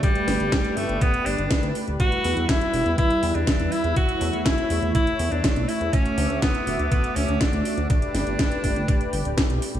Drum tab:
HH |xxoxxxoxxxoxxxox|xxoxxxoxxxo-xxox|xxoxxxoxxxoxxxox|xxo-xxoxxxoxxxox|
SD |--o-o-------o---|----o-------o---|----o-------o---|----o-------o---|
BD |o---o---o---o---|o---o---o---o---|o---o---o---o---|o---o---o---o---|

HH |xxoxxxo-xxoxxxox|
SD |--o-o-------o---|
BD |o---o-o-o---o---|